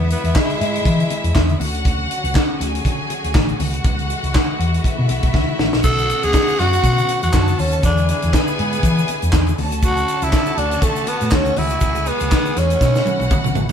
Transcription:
Already playing: E2 D3 E3 G#3 B3 E4 E5
0.10 B3, closed hi-hat
0.24 E2, closed hi-hat
0.35 G#3, kick, snare, clap, high conga
0.50 closed hi-hat
0.60 G#2, closed hi-hat
0.75 closed hi-hat
0.85 E3, kick, closed hi-hat, muted conga
1.00 closed hi-hat
1.10 closed hi-hat, muted conga
1.24 E2, closed hi-hat
1.35 E2, kick, snare, clap, high conga
1.49 closed hi-hat, high conga
1.60 D2 F#3 A3 C#4 F#4 F#5, open hi-hat, high conga
1.75 closed hi-hat
1.85 kick, closed hi-hat, muted conga
2.11 closed hi-hat
2.24 C#2, closed hi-hat
2.34 kick, snare, clap, high conga
2.60 D2 G#4 G#5, snare, closed hi-hat
2.75 closed hi-hat
2.85 D3, kick, closed hi-hat, muted conga
3.10 closed hi-hat, muted conga
3.24 D2, closed hi-hat
3.35 A1, kick, snare, clap, high conga
3.48 closed hi-hat, high conga
3.60 C#2 E3 G#3 B3 F#4 F#5, open hi-hat, high conga
3.74 closed hi-hat
3.84 C#2, kick, closed hi-hat, muted conga
3.99 closed hi-hat
4.10 closed hi-hat
4.23 C#2, closed hi-hat
4.34 kick, snare, clap, high conga
4.59 E2, closed hi-hat
4.74 closed hi-hat
4.84 E4 E5, kick, closed hi-hat, muted conga
4.98 B2
5.09 B1, closed hi-hat, muted conga
5.23 B1, kick, closed hi-hat
5.34 C#2, kick, snare, high conga
5.49 high conga
5.59 A1, snare, high conga
5.73 A#1, snare
5.83 B1 D3 C#4 F#4 A4 F#5, kick, crash, muted conga, shaker
5.98 shaker
6.10 closed hi-hat, muted conga, shaker
6.23 D2 G#4, closed hi-hat, shaker
6.34 kick, snare, clap, high conga, shaker
6.48 shaker
6.59 F#2 F#4, snare, closed hi-hat
6.73 closed hi-hat, shaker
6.84 B2, kick, closed hi-hat, muted conga, shaker
6.98 closed hi-hat, shaker
7.09 closed hi-hat, muted conga, shaker
7.22 E2 F#4, closed hi-hat, shaker
7.32 F#2 A4 A5, kick, snare, clap, high conga, shaker
7.48 closed hi-hat, high conga, shaker
7.59 D#2 C#4, open hi-hat, high conga
7.72 closed hi-hat, shaker
7.83 E2 E3 G#3 D4 E4 G#4 G#5, kick, closed hi-hat, muted conga, shaker
7.97 closed hi-hat, shaker
8.09 D4, closed hi-hat, muted conga, shaker
8.22 E2, closed hi-hat, shaker
8.33 B3, kick, snare, clap, high conga, shaker
8.47 shaker
8.59 G#2, closed hi-hat
8.73 closed hi-hat, shaker
8.83 E3, kick, closed hi-hat, muted conga, shaker
8.98 shaker
9.08 closed hi-hat, muted conga, shaker
9.22 E2, closed hi-hat, shaker
9.33 E2, kick, snare, clap, high conga, shaker
9.46 closed hi-hat, high conga, shaker
9.58 D2 F#3 A3 C#4 F#4 A4 A5, open hi-hat, high conga
9.72 closed hi-hat, shaker
9.83 F#4, kick, closed hi-hat, muted conga, shaker
9.97 closed hi-hat, shaker
10.08 closed hi-hat, shaker
10.22 C#2 E4, closed hi-hat, shaker
10.32 kick, snare, clap, high conga, shaker
10.46 closed hi-hat, shaker
10.57 D2 D4, closed hi-hat
10.71 closed hi-hat, shaker
10.82 D3 A3, kick, closed hi-hat, muted conga, shaker
10.96 closed hi-hat, shaker
11.07 B3, closed hi-hat, muted conga, shaker
11.21 A2, closed hi-hat, shaker
11.30 D2, kick, snare, clap, high conga, shaker
11.35 C#4
11.45 closed hi-hat, high conga, shaker
11.56 C#2 E3 G#3 B3 E4 G#4 G#5, open hi-hat, high conga
11.69 closed hi-hat, shaker
11.81 C#2, kick, closed hi-hat, muted conga, shaker
11.95 closed hi-hat, shaker
12.06 B3, closed hi-hat, shaker
12.20 C#2, closed hi-hat, shaker
12.31 kick, snare, clap, high conga, shaker
12.45 closed hi-hat, shaker
12.57 E2 C#4, snare, closed hi-hat, shaker
12.70 closed hi-hat, shaker
12.81 B2 D3 C#4 E4 F#4 F#5, kick, snare, muted conga, shaker
12.95 snare, shaker
13.06 high tom, muted conga, shaker
13.20 B1, high tom, shaker
13.31 kick, mid tom, high conga, shaker
13.44 B1, mid tom, high conga, shaker
13.55 A1, floor tom, high conga, shaker

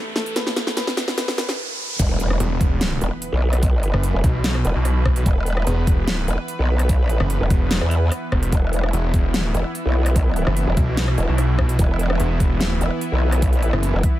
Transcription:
Already playing: E2 E3 A3, riser
0.16 A4, snare
0.26 closed hi-hat
0.36 B4, snare, closed hi-hat
0.47 snare
0.56 snare, closed hi-hat
0.67 snare
0.77 B4, snare, closed hi-hat
0.87 snare
0.97 snare, closed hi-hat
1.08 snare
1.18 B4, snare, closed hi-hat
1.28 snare
1.38 B4, snare, closed hi-hat
1.49 snare
1.99 E1 E3 B3 B4, kick, closed hi-hat, crash, impact
2.20 closed hi-hat
2.30 cross-stick
2.40 E1, closed hi-hat
2.61 kick, closed hi-hat
2.81 snare, closed hi-hat
3.01 E1, closed hi-hat
3.22 closed hi-hat
3.32 B1
3.53 cross-stick, closed hi-hat
3.63 kick, closed hi-hat
3.83 closed hi-hat
3.94 F#1, cross-stick
4.03 closed hi-hat
4.14 E1
4.24 B1, kick, closed hi-hat
4.44 snare, closed hi-hat
4.55 cross-stick
4.65 E1, closed hi-hat
4.75 B1
4.85 cross-stick, closed hi-hat
5.05 B1, kick, cross-stick
5.16 closed hi-hat
5.26 E1, kick, closed hi-hat
5.46 closed hi-hat
5.57 cross-stick
5.67 E1, closed hi-hat
5.87 kick, closed hi-hat
6.08 snare, closed hi-hat
6.28 E1, closed hi-hat
6.48 closed hi-hat
6.59 B1
6.79 cross-stick, closed hi-hat
6.89 kick, closed hi-hat
7.01 A#1
7.10 closed hi-hat
7.20 F#1, cross-stick
7.30 closed hi-hat
7.41 E1
7.50 E1, kick, closed hi-hat
7.71 snare, closed hi-hat
7.81 E2, cross-stick
7.91 closed hi-hat
8.12 cross-stick, closed hi-hat
8.32 E1, kick, cross-stick
8.43 closed hi-hat
8.52 E1 E4, kick, closed hi-hat
8.73 closed hi-hat
8.83 cross-stick
8.93 E1, closed hi-hat
9.14 kick, closed hi-hat
9.34 D#1, snare, closed hi-hat
9.55 E1, closed hi-hat
9.75 closed hi-hat
9.86 B1
10.06 cross-stick, closed hi-hat
10.16 kick, closed hi-hat
10.36 closed hi-hat
10.47 F#1, cross-stick
10.57 closed hi-hat
10.67 E1
10.77 B1, kick, closed hi-hat
10.97 snare, closed hi-hat
11.08 cross-stick
11.18 E1, closed hi-hat
11.28 B1
11.38 cross-stick, closed hi-hat
11.59 B1, kick, cross-stick
11.69 closed hi-hat
11.79 E1, kick, closed hi-hat
11.99 closed hi-hat
12.10 cross-stick
12.20 E1, closed hi-hat
12.40 kick, closed hi-hat
12.61 D#1, snare, closed hi-hat
12.81 E1, closed hi-hat
13.01 closed hi-hat
13.12 B1
13.32 cross-stick, closed hi-hat
13.42 kick, closed hi-hat
13.53 A#1, closed hi-hat
13.63 closed hi-hat
13.73 F#1, cross-stick
13.83 closed hi-hat
13.94 E1
14.03 kick, closed hi-hat

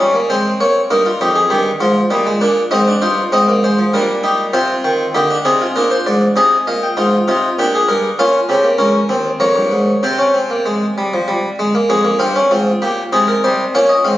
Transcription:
Already playing: C#5
0.00 G3 C#4
0.14 A#3
0.30 G#3 C4 C5
0.60 A#3 C#5
0.90 G2 A#3 D#4 A#4
1.06 F4
1.21 F2 D#4 G4
1.35 G#4
1.50 G2 D#3 G4
1.80 G#2 F3 F4
2.10 A#2 G3 D#4
2.26 G#3
2.41 A#2 A#3 D4
2.71 G#2 C4 D#4 D#5
2.88 D4
3.02 G2 D#4 F4 C5
3.32 G#2 C4 D#4 D#5
3.48 A#3
3.64 G#3 C5
3.79 F3
3.94 A#2 G3 D4 A#4
4.24 D#4 G4
4.53 C3 C4 F4 C5
4.84 D#3 G5
5.15 D3 A#3 D#4 G4
5.30 D4
5.45 C3 C4 D#4 G#4
5.62 F4
5.76 A#2 D4 A#4
5.91 C5
6.06 G#2 D5
6.36 C3 D#4 G#4 D#5
6.67 A#2 D#5 F5
6.83 G5
6.97 G#2 D#4 F4
7.28 C3 D#4 F4
7.59 A#2 D4 G4
7.75 G#4
7.89 G2 A#4
8.19 A#2 C#4 F4 F5
8.49 C#3 C4 G4
8.64 A#3
8.78 C#2 C#4 A#4
9.09 D#2 C4
9.40 F2 A#3 C#5 A#5
9.56 G2
9.71 G#2
10.03 C3 C4 C5 G5
10.19 C#4
10.34 C4
10.50 A#3
10.66 G#3
10.98 G3
11.14 F3
11.28 G3
11.59 G#3
11.75 A#3
11.90 F2 G#3 G#4
12.04 A#3
12.19 G2 C4 F5
12.36 C#4
12.51 G#2 C4 F4
12.82 A#2 A#3 G4
13.13 C3 G#3 D#4 G#4
13.28 A#4
13.44 C3 G3 C5
13.75 A#2 A#3 C#4 C#5
13.89 D#5
14.05 G#2 C4 F5

